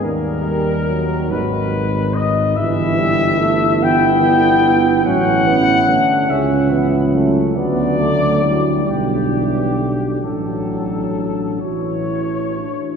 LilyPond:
<<
  \new Staff \with { instrumentName = "Trumpet section" } { \time 6/8 \key gis \minor \tempo 4. = 47 ais'4. b'4 dis''8 | \key d \major e''4. g''4. | fis''4. e''4 r8 | d''4. g'4. |
a'4. cis''4. | }
  \new Staff \with { instrumentName = "French horn section" } { \time 6/8 \key gis \minor dis'2. | \key d \major e'2. | cis'4. cis'4. | b8 a8 e'8 d'4. |
d'4. fis'8 e'8 d'8 | }
  \new Staff \with { instrumentName = "Trombone" } { \time 6/8 \key gis \minor ais8 g8 fis4. r8 | \key d \major e8 g8 a8 b4. | cis'8 b8 a8 cis'8 b8 a8 | b8 a8 g4. r8 |
fis2~ fis16 r8. | }
  \new Staff \with { instrumentName = "Trombone section" } { \clef bass \time 6/8 \key gis \minor g4. dis4. | \key d \major e4. e8 d8 e8 | fis8 e8 d8 cis8 e8 fis8~ | fis4. g8 e8 d8 |
fis4. e4 r8 | }
  \new Staff \with { instrumentName = "Tuba" } { \clef bass \time 6/8 \key gis \minor dis,4. gis,,4. | \key d \major g,,2. | a,,4 r8 cis,4. | d,4. b,,4. |
a,,4. a,,4 r8 | }
>>